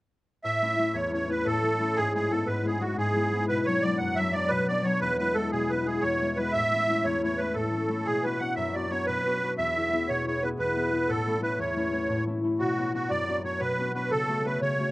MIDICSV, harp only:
0, 0, Header, 1, 2, 480
1, 0, Start_track
1, 0, Key_signature, 3, "major"
1, 0, Tempo, 338409
1, 630, Time_signature, 9, 3, 24, 8
1, 12149, Tempo, 335570
1, 21232, End_track
2, 0, Start_track
2, 0, Title_t, "Harp"
2, 0, Program_c, 0, 46
2, 628, Note_on_c, 0, 45, 56
2, 883, Note_on_c, 0, 57, 42
2, 885, Note_on_c, 0, 61, 39
2, 897, Note_on_c, 0, 64, 52
2, 1111, Note_off_c, 0, 57, 0
2, 1117, Note_on_c, 0, 57, 47
2, 1120, Note_off_c, 0, 61, 0
2, 1125, Note_off_c, 0, 64, 0
2, 1125, Note_on_c, 0, 61, 40
2, 1130, Note_on_c, 0, 64, 50
2, 1337, Note_on_c, 0, 40, 56
2, 1423, Note_off_c, 0, 45, 0
2, 1588, Note_off_c, 0, 57, 0
2, 1594, Note_on_c, 0, 57, 41
2, 1598, Note_off_c, 0, 61, 0
2, 1603, Note_off_c, 0, 64, 0
2, 1604, Note_on_c, 0, 61, 45
2, 1608, Note_on_c, 0, 64, 46
2, 1816, Note_off_c, 0, 57, 0
2, 1822, Note_on_c, 0, 57, 37
2, 1828, Note_off_c, 0, 61, 0
2, 1834, Note_off_c, 0, 64, 0
2, 1834, Note_on_c, 0, 61, 34
2, 1840, Note_on_c, 0, 64, 48
2, 2055, Note_on_c, 0, 45, 65
2, 2144, Note_off_c, 0, 40, 0
2, 2309, Note_off_c, 0, 57, 0
2, 2315, Note_on_c, 0, 57, 46
2, 2319, Note_off_c, 0, 61, 0
2, 2325, Note_off_c, 0, 64, 0
2, 2325, Note_on_c, 0, 61, 36
2, 2331, Note_on_c, 0, 64, 53
2, 2543, Note_off_c, 0, 57, 0
2, 2549, Note_on_c, 0, 57, 44
2, 2551, Note_off_c, 0, 61, 0
2, 2555, Note_off_c, 0, 64, 0
2, 2557, Note_on_c, 0, 61, 41
2, 2561, Note_on_c, 0, 64, 49
2, 2798, Note_on_c, 0, 44, 53
2, 2865, Note_off_c, 0, 45, 0
2, 2883, Note_off_c, 0, 57, 0
2, 3041, Note_on_c, 0, 56, 42
2, 3046, Note_on_c, 0, 59, 41
2, 3049, Note_off_c, 0, 64, 0
2, 3054, Note_on_c, 0, 64, 52
2, 3264, Note_off_c, 0, 56, 0
2, 3280, Note_off_c, 0, 59, 0
2, 3281, Note_on_c, 0, 56, 52
2, 3286, Note_on_c, 0, 59, 42
2, 3287, Note_off_c, 0, 64, 0
2, 3292, Note_on_c, 0, 64, 48
2, 3484, Note_off_c, 0, 44, 0
2, 3501, Note_on_c, 0, 44, 63
2, 3741, Note_off_c, 0, 56, 0
2, 3755, Note_on_c, 0, 56, 42
2, 3760, Note_off_c, 0, 59, 0
2, 3761, Note_off_c, 0, 64, 0
2, 3765, Note_on_c, 0, 59, 45
2, 3767, Note_on_c, 0, 64, 48
2, 3964, Note_off_c, 0, 56, 0
2, 3978, Note_off_c, 0, 59, 0
2, 3981, Note_on_c, 0, 56, 48
2, 3984, Note_on_c, 0, 59, 39
2, 3991, Note_off_c, 0, 64, 0
2, 3996, Note_on_c, 0, 64, 42
2, 4200, Note_off_c, 0, 44, 0
2, 4217, Note_on_c, 0, 44, 61
2, 4459, Note_off_c, 0, 56, 0
2, 4476, Note_on_c, 0, 56, 42
2, 4479, Note_off_c, 0, 59, 0
2, 4485, Note_on_c, 0, 59, 39
2, 4487, Note_off_c, 0, 64, 0
2, 4493, Note_on_c, 0, 64, 50
2, 4699, Note_off_c, 0, 56, 0
2, 4713, Note_off_c, 0, 59, 0
2, 4716, Note_on_c, 0, 56, 44
2, 4719, Note_on_c, 0, 59, 40
2, 4728, Note_off_c, 0, 64, 0
2, 4734, Note_on_c, 0, 64, 56
2, 4953, Note_on_c, 0, 47, 54
2, 5029, Note_off_c, 0, 44, 0
2, 5029, Note_off_c, 0, 56, 0
2, 5207, Note_on_c, 0, 54, 44
2, 5208, Note_off_c, 0, 59, 0
2, 5214, Note_on_c, 0, 59, 46
2, 5222, Note_on_c, 0, 62, 43
2, 5307, Note_off_c, 0, 61, 0
2, 5431, Note_off_c, 0, 54, 0
2, 5447, Note_off_c, 0, 59, 0
2, 5448, Note_on_c, 0, 54, 46
2, 5452, Note_on_c, 0, 59, 38
2, 5456, Note_off_c, 0, 62, 0
2, 5461, Note_on_c, 0, 62, 45
2, 5673, Note_on_c, 0, 42, 58
2, 5750, Note_off_c, 0, 47, 0
2, 5923, Note_off_c, 0, 54, 0
2, 5940, Note_on_c, 0, 54, 50
2, 5946, Note_off_c, 0, 59, 0
2, 5951, Note_on_c, 0, 59, 46
2, 5957, Note_off_c, 0, 62, 0
2, 5963, Note_on_c, 0, 62, 54
2, 6144, Note_off_c, 0, 54, 0
2, 6161, Note_off_c, 0, 59, 0
2, 6161, Note_on_c, 0, 54, 45
2, 6167, Note_on_c, 0, 59, 43
2, 6172, Note_off_c, 0, 62, 0
2, 6177, Note_on_c, 0, 62, 51
2, 6388, Note_on_c, 0, 47, 59
2, 6471, Note_off_c, 0, 42, 0
2, 6636, Note_off_c, 0, 54, 0
2, 6649, Note_on_c, 0, 54, 47
2, 6655, Note_off_c, 0, 62, 0
2, 6657, Note_off_c, 0, 59, 0
2, 6661, Note_on_c, 0, 62, 52
2, 6663, Note_on_c, 0, 59, 44
2, 6860, Note_off_c, 0, 54, 0
2, 6875, Note_off_c, 0, 59, 0
2, 6877, Note_on_c, 0, 54, 44
2, 6881, Note_on_c, 0, 59, 46
2, 6886, Note_off_c, 0, 62, 0
2, 6892, Note_on_c, 0, 62, 51
2, 7109, Note_on_c, 0, 40, 56
2, 7191, Note_off_c, 0, 47, 0
2, 7191, Note_off_c, 0, 54, 0
2, 7371, Note_off_c, 0, 59, 0
2, 7375, Note_on_c, 0, 56, 42
2, 7377, Note_on_c, 0, 59, 40
2, 7383, Note_off_c, 0, 64, 0
2, 7389, Note_on_c, 0, 64, 45
2, 7583, Note_off_c, 0, 56, 0
2, 7598, Note_off_c, 0, 59, 0
2, 7598, Note_on_c, 0, 56, 50
2, 7604, Note_on_c, 0, 59, 39
2, 7607, Note_off_c, 0, 64, 0
2, 7613, Note_on_c, 0, 64, 51
2, 7839, Note_on_c, 0, 47, 57
2, 8058, Note_off_c, 0, 56, 0
2, 8063, Note_on_c, 0, 56, 46
2, 8099, Note_off_c, 0, 59, 0
2, 8104, Note_on_c, 0, 59, 41
2, 8139, Note_off_c, 0, 64, 0
2, 8145, Note_on_c, 0, 64, 49
2, 8297, Note_off_c, 0, 56, 0
2, 8309, Note_on_c, 0, 56, 38
2, 8316, Note_off_c, 0, 64, 0
2, 8319, Note_off_c, 0, 59, 0
2, 8321, Note_on_c, 0, 64, 50
2, 8324, Note_on_c, 0, 59, 37
2, 8536, Note_off_c, 0, 40, 0
2, 8553, Note_on_c, 0, 40, 52
2, 8804, Note_off_c, 0, 56, 0
2, 8818, Note_on_c, 0, 56, 47
2, 8821, Note_off_c, 0, 59, 0
2, 8827, Note_on_c, 0, 59, 37
2, 8828, Note_off_c, 0, 64, 0
2, 8834, Note_on_c, 0, 64, 48
2, 9036, Note_off_c, 0, 56, 0
2, 9050, Note_on_c, 0, 56, 50
2, 9056, Note_off_c, 0, 59, 0
2, 9058, Note_off_c, 0, 64, 0
2, 9062, Note_on_c, 0, 59, 38
2, 9063, Note_on_c, 0, 64, 47
2, 9286, Note_on_c, 0, 45, 49
2, 9350, Note_off_c, 0, 40, 0
2, 9350, Note_off_c, 0, 47, 0
2, 9350, Note_off_c, 0, 56, 0
2, 9518, Note_on_c, 0, 57, 38
2, 9547, Note_on_c, 0, 61, 39
2, 9570, Note_off_c, 0, 64, 0
2, 9575, Note_on_c, 0, 64, 49
2, 9632, Note_off_c, 0, 62, 0
2, 9771, Note_off_c, 0, 57, 0
2, 9775, Note_off_c, 0, 61, 0
2, 9777, Note_on_c, 0, 57, 47
2, 9781, Note_on_c, 0, 61, 36
2, 9782, Note_off_c, 0, 64, 0
2, 9788, Note_on_c, 0, 64, 49
2, 9994, Note_on_c, 0, 40, 59
2, 10069, Note_off_c, 0, 45, 0
2, 10244, Note_off_c, 0, 57, 0
2, 10250, Note_on_c, 0, 57, 46
2, 10254, Note_off_c, 0, 61, 0
2, 10257, Note_off_c, 0, 64, 0
2, 10259, Note_on_c, 0, 61, 40
2, 10263, Note_on_c, 0, 64, 48
2, 10470, Note_off_c, 0, 57, 0
2, 10475, Note_on_c, 0, 57, 49
2, 10484, Note_off_c, 0, 61, 0
2, 10489, Note_on_c, 0, 61, 37
2, 10490, Note_off_c, 0, 64, 0
2, 10496, Note_on_c, 0, 64, 43
2, 10708, Note_on_c, 0, 45, 52
2, 10787, Note_off_c, 0, 40, 0
2, 10967, Note_off_c, 0, 57, 0
2, 10973, Note_on_c, 0, 57, 50
2, 10976, Note_off_c, 0, 61, 0
2, 10980, Note_off_c, 0, 64, 0
2, 10982, Note_on_c, 0, 61, 39
2, 10986, Note_on_c, 0, 64, 47
2, 11190, Note_off_c, 0, 57, 0
2, 11195, Note_on_c, 0, 57, 50
2, 11196, Note_off_c, 0, 61, 0
2, 11202, Note_on_c, 0, 61, 44
2, 11203, Note_off_c, 0, 64, 0
2, 11209, Note_on_c, 0, 64, 48
2, 11437, Note_on_c, 0, 47, 54
2, 11505, Note_off_c, 0, 45, 0
2, 11691, Note_off_c, 0, 59, 0
2, 11697, Note_on_c, 0, 59, 46
2, 11712, Note_on_c, 0, 62, 41
2, 11713, Note_on_c, 0, 66, 49
2, 11797, Note_off_c, 0, 61, 0
2, 11912, Note_off_c, 0, 59, 0
2, 11917, Note_on_c, 0, 59, 50
2, 11922, Note_off_c, 0, 62, 0
2, 11926, Note_off_c, 0, 66, 0
2, 11927, Note_on_c, 0, 62, 38
2, 11932, Note_on_c, 0, 66, 52
2, 12153, Note_on_c, 0, 42, 58
2, 12222, Note_off_c, 0, 47, 0
2, 12409, Note_off_c, 0, 59, 0
2, 12414, Note_off_c, 0, 62, 0
2, 12414, Note_on_c, 0, 59, 44
2, 12420, Note_on_c, 0, 62, 42
2, 12424, Note_off_c, 0, 66, 0
2, 12430, Note_on_c, 0, 66, 47
2, 12631, Note_off_c, 0, 59, 0
2, 12637, Note_on_c, 0, 59, 46
2, 12640, Note_off_c, 0, 62, 0
2, 12644, Note_off_c, 0, 66, 0
2, 12646, Note_on_c, 0, 62, 39
2, 12650, Note_on_c, 0, 66, 51
2, 12886, Note_on_c, 0, 47, 54
2, 12945, Note_off_c, 0, 42, 0
2, 13137, Note_off_c, 0, 59, 0
2, 13141, Note_off_c, 0, 62, 0
2, 13143, Note_on_c, 0, 59, 47
2, 13146, Note_on_c, 0, 62, 36
2, 13155, Note_off_c, 0, 66, 0
2, 13160, Note_on_c, 0, 66, 46
2, 13374, Note_off_c, 0, 59, 0
2, 13378, Note_off_c, 0, 62, 0
2, 13380, Note_on_c, 0, 59, 43
2, 13384, Note_on_c, 0, 62, 42
2, 13391, Note_off_c, 0, 66, 0
2, 13397, Note_on_c, 0, 66, 48
2, 13607, Note_on_c, 0, 40, 59
2, 13668, Note_off_c, 0, 47, 0
2, 13862, Note_off_c, 0, 59, 0
2, 13867, Note_on_c, 0, 59, 48
2, 13871, Note_off_c, 0, 64, 0
2, 13877, Note_on_c, 0, 64, 44
2, 13887, Note_on_c, 0, 68, 51
2, 13973, Note_off_c, 0, 57, 0
2, 14091, Note_off_c, 0, 59, 0
2, 14097, Note_on_c, 0, 59, 46
2, 14099, Note_off_c, 0, 64, 0
2, 14105, Note_on_c, 0, 64, 44
2, 14107, Note_off_c, 0, 68, 0
2, 14112, Note_on_c, 0, 68, 55
2, 14332, Note_on_c, 0, 47, 62
2, 14585, Note_off_c, 0, 59, 0
2, 14591, Note_on_c, 0, 59, 40
2, 14594, Note_off_c, 0, 64, 0
2, 14599, Note_on_c, 0, 64, 42
2, 14603, Note_off_c, 0, 68, 0
2, 14608, Note_on_c, 0, 68, 49
2, 14811, Note_off_c, 0, 59, 0
2, 14817, Note_on_c, 0, 59, 50
2, 14824, Note_off_c, 0, 64, 0
2, 14829, Note_off_c, 0, 68, 0
2, 14830, Note_on_c, 0, 64, 43
2, 14834, Note_on_c, 0, 68, 50
2, 15032, Note_off_c, 0, 40, 0
2, 15049, Note_on_c, 0, 40, 56
2, 15295, Note_off_c, 0, 59, 0
2, 15300, Note_on_c, 0, 59, 45
2, 15301, Note_off_c, 0, 64, 0
2, 15307, Note_on_c, 0, 64, 40
2, 15314, Note_off_c, 0, 68, 0
2, 15320, Note_on_c, 0, 68, 47
2, 15528, Note_off_c, 0, 59, 0
2, 15534, Note_on_c, 0, 59, 46
2, 15538, Note_off_c, 0, 64, 0
2, 15539, Note_off_c, 0, 68, 0
2, 15543, Note_on_c, 0, 64, 39
2, 15545, Note_on_c, 0, 68, 48
2, 15752, Note_on_c, 0, 45, 51
2, 15832, Note_off_c, 0, 40, 0
2, 15832, Note_off_c, 0, 47, 0
2, 15837, Note_off_c, 0, 68, 0
2, 16017, Note_on_c, 0, 57, 39
2, 16028, Note_off_c, 0, 64, 0
2, 16029, Note_on_c, 0, 61, 43
2, 16034, Note_on_c, 0, 64, 48
2, 16114, Note_off_c, 0, 62, 0
2, 16221, Note_off_c, 0, 57, 0
2, 16227, Note_on_c, 0, 57, 44
2, 16235, Note_off_c, 0, 61, 0
2, 16238, Note_off_c, 0, 64, 0
2, 16241, Note_on_c, 0, 61, 42
2, 16243, Note_on_c, 0, 64, 53
2, 16471, Note_on_c, 0, 40, 60
2, 16552, Note_off_c, 0, 45, 0
2, 16717, Note_off_c, 0, 57, 0
2, 16723, Note_on_c, 0, 57, 43
2, 16727, Note_off_c, 0, 61, 0
2, 16732, Note_on_c, 0, 61, 46
2, 16734, Note_off_c, 0, 64, 0
2, 16740, Note_on_c, 0, 64, 56
2, 16883, Note_off_c, 0, 66, 0
2, 16949, Note_off_c, 0, 57, 0
2, 16953, Note_off_c, 0, 61, 0
2, 16954, Note_on_c, 0, 57, 43
2, 16959, Note_on_c, 0, 61, 42
2, 16964, Note_off_c, 0, 64, 0
2, 16970, Note_on_c, 0, 64, 40
2, 17188, Note_on_c, 0, 45, 59
2, 17272, Note_off_c, 0, 40, 0
2, 17443, Note_off_c, 0, 57, 0
2, 17448, Note_on_c, 0, 57, 43
2, 17451, Note_off_c, 0, 61, 0
2, 17457, Note_on_c, 0, 61, 37
2, 17462, Note_off_c, 0, 64, 0
2, 17468, Note_on_c, 0, 64, 54
2, 17679, Note_off_c, 0, 57, 0
2, 17684, Note_on_c, 0, 57, 48
2, 17690, Note_off_c, 0, 61, 0
2, 17696, Note_on_c, 0, 61, 41
2, 17698, Note_off_c, 0, 64, 0
2, 17704, Note_on_c, 0, 64, 45
2, 17922, Note_on_c, 0, 47, 52
2, 17992, Note_off_c, 0, 45, 0
2, 18176, Note_off_c, 0, 59, 0
2, 18182, Note_on_c, 0, 59, 44
2, 18185, Note_on_c, 0, 62, 40
2, 18191, Note_on_c, 0, 66, 47
2, 18271, Note_off_c, 0, 61, 0
2, 18403, Note_off_c, 0, 59, 0
2, 18409, Note_on_c, 0, 59, 43
2, 18410, Note_off_c, 0, 62, 0
2, 18416, Note_off_c, 0, 66, 0
2, 18416, Note_on_c, 0, 62, 40
2, 18422, Note_on_c, 0, 66, 58
2, 18636, Note_on_c, 0, 42, 50
2, 18711, Note_off_c, 0, 47, 0
2, 18889, Note_off_c, 0, 59, 0
2, 18895, Note_on_c, 0, 59, 51
2, 18898, Note_off_c, 0, 62, 0
2, 18902, Note_off_c, 0, 66, 0
2, 18904, Note_on_c, 0, 62, 43
2, 18908, Note_on_c, 0, 66, 54
2, 19114, Note_off_c, 0, 59, 0
2, 19120, Note_on_c, 0, 59, 43
2, 19126, Note_off_c, 0, 62, 0
2, 19127, Note_off_c, 0, 66, 0
2, 19132, Note_on_c, 0, 62, 37
2, 19133, Note_on_c, 0, 66, 46
2, 19355, Note_on_c, 0, 47, 67
2, 19429, Note_off_c, 0, 42, 0
2, 19615, Note_off_c, 0, 59, 0
2, 19621, Note_on_c, 0, 59, 48
2, 19628, Note_off_c, 0, 66, 0
2, 19629, Note_off_c, 0, 62, 0
2, 19634, Note_on_c, 0, 62, 41
2, 19634, Note_on_c, 0, 66, 54
2, 19836, Note_off_c, 0, 59, 0
2, 19841, Note_on_c, 0, 59, 44
2, 19842, Note_off_c, 0, 62, 0
2, 19847, Note_off_c, 0, 66, 0
2, 19848, Note_on_c, 0, 62, 43
2, 19853, Note_on_c, 0, 66, 51
2, 20081, Note_on_c, 0, 49, 61
2, 20147, Note_off_c, 0, 47, 0
2, 20167, Note_off_c, 0, 62, 0
2, 20331, Note_off_c, 0, 57, 0
2, 20337, Note_on_c, 0, 57, 51
2, 20341, Note_on_c, 0, 61, 42
2, 20348, Note_off_c, 0, 66, 0
2, 20354, Note_on_c, 0, 66, 50
2, 20561, Note_off_c, 0, 57, 0
2, 20566, Note_on_c, 0, 57, 49
2, 20567, Note_off_c, 0, 61, 0
2, 20573, Note_off_c, 0, 66, 0
2, 20573, Note_on_c, 0, 61, 42
2, 20579, Note_on_c, 0, 66, 53
2, 20779, Note_off_c, 0, 49, 0
2, 20796, Note_on_c, 0, 49, 60
2, 21052, Note_off_c, 0, 57, 0
2, 21056, Note_off_c, 0, 61, 0
2, 21057, Note_on_c, 0, 57, 42
2, 21061, Note_on_c, 0, 61, 46
2, 21065, Note_off_c, 0, 66, 0
2, 21071, Note_on_c, 0, 66, 47
2, 21232, Note_off_c, 0, 49, 0
2, 21232, Note_off_c, 0, 57, 0
2, 21232, Note_off_c, 0, 59, 0
2, 21232, Note_off_c, 0, 61, 0
2, 21232, Note_off_c, 0, 64, 0
2, 21232, Note_off_c, 0, 66, 0
2, 21232, End_track
0, 0, End_of_file